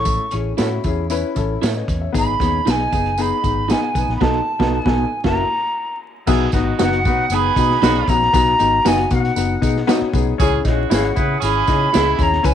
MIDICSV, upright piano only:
0, 0, Header, 1, 2, 480
1, 0, Start_track
1, 0, Tempo, 516351
1, 60, Time_signature, 4, 2, 24, 8
1, 11657, End_track
2, 0, Start_track
2, 0, Title_t, "Upright piano"
2, 0, Program_c, 0, 0
2, 0, Note_on_c, 0, 61, 69
2, 0, Note_on_c, 0, 64, 63
2, 0, Note_on_c, 0, 69, 84
2, 207, Note_off_c, 0, 61, 0
2, 210, Note_off_c, 0, 64, 0
2, 245, Note_off_c, 0, 69, 0
2, 305, Note_on_c, 0, 61, 68
2, 307, Note_on_c, 0, 64, 61
2, 320, Note_on_c, 0, 68, 74
2, 467, Note_off_c, 0, 61, 0
2, 468, Note_off_c, 0, 64, 0
2, 475, Note_off_c, 0, 68, 0
2, 542, Note_on_c, 0, 61, 80
2, 552, Note_on_c, 0, 64, 70
2, 560, Note_on_c, 0, 66, 94
2, 706, Note_off_c, 0, 61, 0
2, 711, Note_off_c, 0, 64, 0
2, 715, Note_off_c, 0, 66, 0
2, 778, Note_on_c, 0, 61, 83
2, 792, Note_on_c, 0, 64, 75
2, 800, Note_on_c, 0, 68, 88
2, 945, Note_off_c, 0, 61, 0
2, 952, Note_off_c, 0, 64, 0
2, 956, Note_off_c, 0, 68, 0
2, 1021, Note_on_c, 0, 61, 101
2, 1028, Note_on_c, 0, 64, 86
2, 1035, Note_on_c, 0, 71, 107
2, 1187, Note_off_c, 0, 61, 0
2, 1190, Note_off_c, 0, 64, 0
2, 1194, Note_off_c, 0, 71, 0
2, 1252, Note_on_c, 0, 61, 87
2, 1263, Note_on_c, 0, 64, 74
2, 1274, Note_on_c, 0, 69, 83
2, 1423, Note_off_c, 0, 61, 0
2, 1428, Note_off_c, 0, 64, 0
2, 1434, Note_off_c, 0, 69, 0
2, 1518, Note_on_c, 0, 73, 63
2, 1521, Note_on_c, 0, 69, 50
2, 1626, Note_on_c, 0, 75, 62
2, 1628, Note_off_c, 0, 73, 0
2, 1629, Note_off_c, 0, 69, 0
2, 1629, Note_on_c, 0, 71, 52
2, 1856, Note_off_c, 0, 75, 0
2, 1858, Note_off_c, 0, 71, 0
2, 1871, Note_on_c, 0, 76, 59
2, 1875, Note_on_c, 0, 73, 44
2, 1975, Note_on_c, 0, 59, 91
2, 1988, Note_on_c, 0, 63, 84
2, 1992, Note_on_c, 0, 68, 97
2, 2099, Note_off_c, 0, 76, 0
2, 2101, Note_off_c, 0, 73, 0
2, 2146, Note_off_c, 0, 59, 0
2, 2152, Note_off_c, 0, 63, 0
2, 2154, Note_off_c, 0, 68, 0
2, 2227, Note_on_c, 0, 59, 75
2, 2241, Note_on_c, 0, 63, 62
2, 2251, Note_on_c, 0, 68, 79
2, 2392, Note_off_c, 0, 59, 0
2, 2399, Note_off_c, 0, 63, 0
2, 2404, Note_off_c, 0, 68, 0
2, 2475, Note_on_c, 0, 59, 72
2, 2482, Note_on_c, 0, 63, 63
2, 2494, Note_on_c, 0, 68, 73
2, 2637, Note_off_c, 0, 59, 0
2, 2640, Note_off_c, 0, 63, 0
2, 2646, Note_off_c, 0, 68, 0
2, 2716, Note_on_c, 0, 59, 72
2, 2725, Note_on_c, 0, 63, 63
2, 2735, Note_on_c, 0, 68, 76
2, 2877, Note_off_c, 0, 59, 0
2, 2882, Note_off_c, 0, 63, 0
2, 2887, Note_off_c, 0, 68, 0
2, 2957, Note_on_c, 0, 59, 86
2, 2960, Note_on_c, 0, 63, 79
2, 2972, Note_on_c, 0, 68, 101
2, 3118, Note_off_c, 0, 59, 0
2, 3120, Note_off_c, 0, 63, 0
2, 3126, Note_off_c, 0, 68, 0
2, 3187, Note_on_c, 0, 59, 66
2, 3200, Note_on_c, 0, 63, 65
2, 3206, Note_on_c, 0, 68, 78
2, 3354, Note_off_c, 0, 59, 0
2, 3360, Note_off_c, 0, 63, 0
2, 3363, Note_off_c, 0, 68, 0
2, 3438, Note_on_c, 0, 63, 66
2, 3439, Note_on_c, 0, 59, 72
2, 3454, Note_on_c, 0, 68, 75
2, 3599, Note_off_c, 0, 63, 0
2, 3600, Note_off_c, 0, 59, 0
2, 3607, Note_off_c, 0, 68, 0
2, 3671, Note_on_c, 0, 59, 69
2, 3686, Note_on_c, 0, 63, 62
2, 3692, Note_on_c, 0, 71, 74
2, 3836, Note_off_c, 0, 59, 0
2, 3844, Note_off_c, 0, 63, 0
2, 3846, Note_off_c, 0, 71, 0
2, 3909, Note_on_c, 0, 59, 94
2, 3918, Note_on_c, 0, 63, 100
2, 3927, Note_on_c, 0, 69, 91
2, 4075, Note_off_c, 0, 59, 0
2, 4080, Note_off_c, 0, 63, 0
2, 4085, Note_off_c, 0, 69, 0
2, 4267, Note_on_c, 0, 59, 87
2, 4278, Note_on_c, 0, 63, 86
2, 4285, Note_on_c, 0, 71, 83
2, 4434, Note_off_c, 0, 59, 0
2, 4440, Note_off_c, 0, 63, 0
2, 4444, Note_off_c, 0, 71, 0
2, 4514, Note_on_c, 0, 59, 89
2, 4523, Note_on_c, 0, 63, 92
2, 4529, Note_on_c, 0, 69, 89
2, 4678, Note_off_c, 0, 59, 0
2, 4683, Note_off_c, 0, 63, 0
2, 4687, Note_off_c, 0, 69, 0
2, 4872, Note_on_c, 0, 58, 88
2, 4881, Note_on_c, 0, 64, 83
2, 4894, Note_on_c, 0, 66, 94
2, 5037, Note_off_c, 0, 58, 0
2, 5042, Note_off_c, 0, 64, 0
2, 5050, Note_off_c, 0, 66, 0
2, 5830, Note_on_c, 0, 59, 114
2, 5836, Note_on_c, 0, 63, 100
2, 5845, Note_on_c, 0, 66, 126
2, 5995, Note_off_c, 0, 59, 0
2, 5998, Note_off_c, 0, 63, 0
2, 6003, Note_off_c, 0, 66, 0
2, 6079, Note_on_c, 0, 59, 81
2, 6083, Note_on_c, 0, 63, 77
2, 6094, Note_on_c, 0, 66, 91
2, 6239, Note_off_c, 0, 59, 0
2, 6241, Note_off_c, 0, 63, 0
2, 6247, Note_off_c, 0, 66, 0
2, 6315, Note_on_c, 0, 59, 93
2, 6320, Note_on_c, 0, 63, 88
2, 6332, Note_on_c, 0, 66, 107
2, 6477, Note_off_c, 0, 59, 0
2, 6480, Note_off_c, 0, 63, 0
2, 6486, Note_off_c, 0, 66, 0
2, 6564, Note_on_c, 0, 59, 78
2, 6569, Note_on_c, 0, 63, 64
2, 6578, Note_on_c, 0, 66, 85
2, 6721, Note_off_c, 0, 59, 0
2, 6724, Note_off_c, 0, 63, 0
2, 6728, Note_off_c, 0, 66, 0
2, 6802, Note_on_c, 0, 59, 74
2, 6811, Note_on_c, 0, 63, 65
2, 6818, Note_on_c, 0, 68, 74
2, 6960, Note_off_c, 0, 59, 0
2, 6965, Note_off_c, 0, 63, 0
2, 6968, Note_off_c, 0, 68, 0
2, 7034, Note_on_c, 0, 59, 72
2, 7042, Note_on_c, 0, 63, 74
2, 7049, Note_on_c, 0, 66, 83
2, 7196, Note_off_c, 0, 59, 0
2, 7200, Note_off_c, 0, 63, 0
2, 7203, Note_off_c, 0, 66, 0
2, 7276, Note_on_c, 0, 59, 90
2, 7289, Note_on_c, 0, 63, 89
2, 7295, Note_on_c, 0, 68, 101
2, 7436, Note_off_c, 0, 59, 0
2, 7443, Note_off_c, 0, 63, 0
2, 7446, Note_off_c, 0, 68, 0
2, 7520, Note_on_c, 0, 59, 74
2, 7526, Note_on_c, 0, 63, 67
2, 7536, Note_on_c, 0, 66, 85
2, 7678, Note_off_c, 0, 59, 0
2, 7681, Note_off_c, 0, 63, 0
2, 7686, Note_off_c, 0, 66, 0
2, 7741, Note_on_c, 0, 59, 93
2, 7756, Note_on_c, 0, 63, 89
2, 7763, Note_on_c, 0, 66, 116
2, 7908, Note_off_c, 0, 59, 0
2, 7915, Note_off_c, 0, 63, 0
2, 7919, Note_off_c, 0, 66, 0
2, 7985, Note_on_c, 0, 59, 75
2, 7996, Note_on_c, 0, 63, 69
2, 8006, Note_on_c, 0, 66, 83
2, 8150, Note_off_c, 0, 59, 0
2, 8155, Note_off_c, 0, 63, 0
2, 8160, Note_off_c, 0, 66, 0
2, 8225, Note_on_c, 0, 59, 103
2, 8240, Note_on_c, 0, 63, 79
2, 8243, Note_on_c, 0, 66, 111
2, 8389, Note_off_c, 0, 59, 0
2, 8397, Note_off_c, 0, 63, 0
2, 8398, Note_off_c, 0, 66, 0
2, 8474, Note_on_c, 0, 59, 68
2, 8483, Note_on_c, 0, 63, 63
2, 8492, Note_on_c, 0, 66, 79
2, 8633, Note_off_c, 0, 59, 0
2, 8637, Note_off_c, 0, 63, 0
2, 8642, Note_off_c, 0, 66, 0
2, 8701, Note_on_c, 0, 59, 75
2, 8707, Note_on_c, 0, 63, 60
2, 8718, Note_on_c, 0, 66, 82
2, 8866, Note_off_c, 0, 59, 0
2, 8869, Note_off_c, 0, 63, 0
2, 8875, Note_off_c, 0, 66, 0
2, 8934, Note_on_c, 0, 59, 73
2, 8943, Note_on_c, 0, 63, 69
2, 8959, Note_on_c, 0, 68, 80
2, 9102, Note_off_c, 0, 59, 0
2, 9107, Note_off_c, 0, 63, 0
2, 9115, Note_off_c, 0, 68, 0
2, 9177, Note_on_c, 0, 59, 117
2, 9184, Note_on_c, 0, 63, 104
2, 9197, Note_on_c, 0, 66, 127
2, 9343, Note_off_c, 0, 59, 0
2, 9347, Note_off_c, 0, 63, 0
2, 9354, Note_off_c, 0, 66, 0
2, 9419, Note_on_c, 0, 59, 88
2, 9424, Note_on_c, 0, 63, 78
2, 9432, Note_on_c, 0, 68, 94
2, 9584, Note_off_c, 0, 59, 0
2, 9587, Note_off_c, 0, 63, 0
2, 9590, Note_off_c, 0, 68, 0
2, 9663, Note_on_c, 0, 61, 109
2, 9679, Note_on_c, 0, 64, 103
2, 9684, Note_on_c, 0, 68, 127
2, 9825, Note_off_c, 0, 61, 0
2, 9834, Note_off_c, 0, 64, 0
2, 9836, Note_off_c, 0, 68, 0
2, 9913, Note_on_c, 0, 61, 89
2, 9923, Note_on_c, 0, 64, 88
2, 9931, Note_on_c, 0, 68, 89
2, 10070, Note_off_c, 0, 61, 0
2, 10075, Note_off_c, 0, 64, 0
2, 10079, Note_off_c, 0, 68, 0
2, 10151, Note_on_c, 0, 61, 94
2, 10158, Note_on_c, 0, 64, 85
2, 10171, Note_on_c, 0, 68, 107
2, 10309, Note_off_c, 0, 61, 0
2, 10312, Note_off_c, 0, 64, 0
2, 10319, Note_off_c, 0, 68, 0
2, 10388, Note_on_c, 0, 61, 73
2, 10396, Note_on_c, 0, 64, 72
2, 10406, Note_on_c, 0, 68, 81
2, 10547, Note_off_c, 0, 61, 0
2, 10551, Note_off_c, 0, 64, 0
2, 10556, Note_off_c, 0, 68, 0
2, 10624, Note_on_c, 0, 61, 72
2, 10634, Note_on_c, 0, 64, 70
2, 10638, Note_on_c, 0, 68, 75
2, 10784, Note_off_c, 0, 61, 0
2, 10789, Note_off_c, 0, 64, 0
2, 10791, Note_off_c, 0, 68, 0
2, 10855, Note_on_c, 0, 61, 77
2, 10863, Note_on_c, 0, 64, 64
2, 10872, Note_on_c, 0, 68, 82
2, 11019, Note_off_c, 0, 61, 0
2, 11023, Note_off_c, 0, 64, 0
2, 11028, Note_off_c, 0, 68, 0
2, 11087, Note_on_c, 0, 61, 89
2, 11098, Note_on_c, 0, 64, 91
2, 11107, Note_on_c, 0, 68, 101
2, 11255, Note_off_c, 0, 61, 0
2, 11260, Note_off_c, 0, 64, 0
2, 11265, Note_off_c, 0, 68, 0
2, 11328, Note_on_c, 0, 61, 76
2, 11334, Note_on_c, 0, 64, 61
2, 11346, Note_on_c, 0, 68, 85
2, 11495, Note_off_c, 0, 61, 0
2, 11498, Note_off_c, 0, 64, 0
2, 11504, Note_off_c, 0, 68, 0
2, 11552, Note_on_c, 0, 61, 95
2, 11562, Note_on_c, 0, 64, 88
2, 11568, Note_on_c, 0, 71, 119
2, 11657, Note_off_c, 0, 61, 0
2, 11657, Note_off_c, 0, 64, 0
2, 11657, Note_off_c, 0, 71, 0
2, 11657, End_track
0, 0, End_of_file